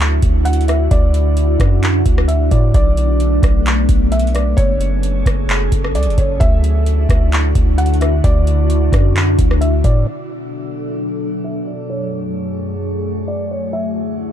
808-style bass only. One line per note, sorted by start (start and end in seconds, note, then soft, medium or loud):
0.00 0.21 D2 loud
0.23 0.89 D2 loud
0.91 1.57 D2 loud
1.60 2.04 F#2 loud
2.06 2.50 D2 loud
2.51 2.73 A2 loud
2.74 3.40 B1 loud
3.43 3.87 B1 loud
3.89 4.55 B1 loud
4.58 5.24 F#1 loud
5.26 5.70 F#1 loud
5.72 5.96 F#1 loud
5.95 6.08 C#2 loud
6.06 6.17 F#1 loud
6.18 6.40 F#1 loud
6.41 7.07 D2 loud
7.09 7.53 D2 loud
7.55 8.21 D2 loud
8.24 8.90 D2 loud
8.93 9.37 F#2 loud
9.39 9.83 D2 loud
9.84 10.06 A2 loud